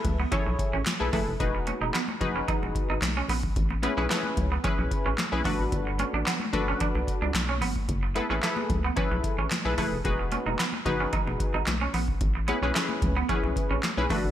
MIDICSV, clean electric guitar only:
0, 0, Header, 1, 3, 480
1, 0, Start_track
1, 0, Tempo, 540541
1, 1243, Time_signature, 4, 2, 24, 8
1, 12707, End_track
2, 0, Start_track
2, 0, Title_t, "Clean electric guitar"
2, 0, Program_c, 0, 27
2, 174, Note_on_c, 0, 59, 75
2, 261, Note_off_c, 0, 59, 0
2, 286, Note_on_c, 0, 61, 92
2, 385, Note_off_c, 0, 61, 0
2, 652, Note_on_c, 0, 61, 79
2, 740, Note_off_c, 0, 61, 0
2, 1006, Note_on_c, 0, 57, 86
2, 1105, Note_off_c, 0, 57, 0
2, 1486, Note_on_c, 0, 61, 70
2, 1585, Note_off_c, 0, 61, 0
2, 1612, Note_on_c, 0, 63, 75
2, 1700, Note_off_c, 0, 63, 0
2, 1722, Note_on_c, 0, 59, 87
2, 1822, Note_off_c, 0, 59, 0
2, 2093, Note_on_c, 0, 61, 73
2, 2181, Note_off_c, 0, 61, 0
2, 2205, Note_on_c, 0, 63, 95
2, 2304, Note_off_c, 0, 63, 0
2, 2574, Note_on_c, 0, 63, 86
2, 2661, Note_off_c, 0, 63, 0
2, 2815, Note_on_c, 0, 61, 89
2, 2902, Note_off_c, 0, 61, 0
2, 2927, Note_on_c, 0, 59, 87
2, 3025, Note_off_c, 0, 59, 0
2, 3405, Note_on_c, 0, 59, 78
2, 3504, Note_off_c, 0, 59, 0
2, 3534, Note_on_c, 0, 61, 81
2, 3621, Note_off_c, 0, 61, 0
2, 3648, Note_on_c, 0, 57, 75
2, 3746, Note_off_c, 0, 57, 0
2, 4012, Note_on_c, 0, 59, 78
2, 4100, Note_off_c, 0, 59, 0
2, 4123, Note_on_c, 0, 61, 83
2, 4223, Note_off_c, 0, 61, 0
2, 4491, Note_on_c, 0, 61, 75
2, 4580, Note_off_c, 0, 61, 0
2, 4843, Note_on_c, 0, 57, 78
2, 4943, Note_off_c, 0, 57, 0
2, 5325, Note_on_c, 0, 61, 73
2, 5424, Note_off_c, 0, 61, 0
2, 5453, Note_on_c, 0, 62, 68
2, 5541, Note_off_c, 0, 62, 0
2, 5565, Note_on_c, 0, 59, 84
2, 5664, Note_off_c, 0, 59, 0
2, 5933, Note_on_c, 0, 61, 74
2, 6021, Note_off_c, 0, 61, 0
2, 6047, Note_on_c, 0, 62, 91
2, 6145, Note_off_c, 0, 62, 0
2, 6412, Note_on_c, 0, 62, 78
2, 6500, Note_off_c, 0, 62, 0
2, 6650, Note_on_c, 0, 61, 82
2, 6739, Note_off_c, 0, 61, 0
2, 6763, Note_on_c, 0, 59, 90
2, 6863, Note_off_c, 0, 59, 0
2, 7244, Note_on_c, 0, 59, 74
2, 7344, Note_off_c, 0, 59, 0
2, 7370, Note_on_c, 0, 61, 80
2, 7459, Note_off_c, 0, 61, 0
2, 7486, Note_on_c, 0, 57, 81
2, 7585, Note_off_c, 0, 57, 0
2, 7854, Note_on_c, 0, 59, 86
2, 7941, Note_off_c, 0, 59, 0
2, 7967, Note_on_c, 0, 61, 85
2, 8065, Note_off_c, 0, 61, 0
2, 8335, Note_on_c, 0, 61, 72
2, 8422, Note_off_c, 0, 61, 0
2, 8684, Note_on_c, 0, 57, 81
2, 8784, Note_off_c, 0, 57, 0
2, 9165, Note_on_c, 0, 61, 77
2, 9264, Note_off_c, 0, 61, 0
2, 9293, Note_on_c, 0, 63, 70
2, 9380, Note_off_c, 0, 63, 0
2, 9406, Note_on_c, 0, 59, 85
2, 9505, Note_off_c, 0, 59, 0
2, 9772, Note_on_c, 0, 61, 78
2, 9860, Note_off_c, 0, 61, 0
2, 9884, Note_on_c, 0, 63, 97
2, 9984, Note_off_c, 0, 63, 0
2, 10249, Note_on_c, 0, 63, 78
2, 10338, Note_off_c, 0, 63, 0
2, 10491, Note_on_c, 0, 61, 79
2, 10579, Note_off_c, 0, 61, 0
2, 10604, Note_on_c, 0, 59, 86
2, 10704, Note_off_c, 0, 59, 0
2, 11081, Note_on_c, 0, 59, 77
2, 11182, Note_off_c, 0, 59, 0
2, 11212, Note_on_c, 0, 61, 73
2, 11300, Note_off_c, 0, 61, 0
2, 11324, Note_on_c, 0, 57, 75
2, 11423, Note_off_c, 0, 57, 0
2, 11691, Note_on_c, 0, 59, 90
2, 11779, Note_off_c, 0, 59, 0
2, 11803, Note_on_c, 0, 61, 95
2, 11903, Note_off_c, 0, 61, 0
2, 12171, Note_on_c, 0, 61, 76
2, 12259, Note_off_c, 0, 61, 0
2, 12524, Note_on_c, 0, 57, 87
2, 12623, Note_off_c, 0, 57, 0
2, 12707, End_track
3, 0, Start_track
3, 0, Title_t, "Muted clean electric guitar strokes"
3, 413, Note_on_c, 9, 29, 46
3, 502, Note_off_c, 9, 29, 0
3, 1373, Note_on_c, 9, 29, 48
3, 1462, Note_off_c, 9, 29, 0
3, 1854, Note_on_c, 9, 29, 44
3, 1942, Note_off_c, 9, 29, 0
3, 2335, Note_on_c, 9, 29, 44
3, 2424, Note_off_c, 9, 29, 0
3, 2689, Note_on_c, 9, 29, 43
3, 2778, Note_off_c, 9, 29, 0
3, 3291, Note_on_c, 9, 29, 48
3, 3380, Note_off_c, 9, 29, 0
3, 3775, Note_on_c, 9, 29, 43
3, 3863, Note_off_c, 9, 29, 0
3, 4252, Note_on_c, 9, 29, 49
3, 4341, Note_off_c, 9, 29, 0
3, 5213, Note_on_c, 9, 29, 48
3, 5302, Note_off_c, 9, 29, 0
3, 5695, Note_on_c, 9, 29, 39
3, 5784, Note_off_c, 9, 29, 0
3, 6175, Note_on_c, 9, 29, 46
3, 6264, Note_off_c, 9, 29, 0
3, 6524, Note_on_c, 9, 29, 42
3, 6613, Note_off_c, 9, 29, 0
3, 7129, Note_on_c, 9, 29, 43
3, 7218, Note_off_c, 9, 29, 0
3, 7614, Note_on_c, 9, 29, 45
3, 7703, Note_off_c, 9, 29, 0
3, 8093, Note_on_c, 9, 29, 51
3, 8182, Note_off_c, 9, 29, 0
3, 9052, Note_on_c, 9, 29, 44
3, 9141, Note_off_c, 9, 29, 0
3, 9535, Note_on_c, 9, 29, 44
3, 9623, Note_off_c, 9, 29, 0
3, 10011, Note_on_c, 9, 29, 46
3, 10100, Note_off_c, 9, 29, 0
3, 10364, Note_on_c, 9, 29, 44
3, 10453, Note_off_c, 9, 29, 0
3, 10970, Note_on_c, 9, 29, 47
3, 11059, Note_off_c, 9, 29, 0
3, 11453, Note_on_c, 9, 29, 41
3, 11542, Note_off_c, 9, 29, 0
3, 11930, Note_on_c, 9, 29, 43
3, 12019, Note_off_c, 9, 29, 0
3, 12707, End_track
0, 0, End_of_file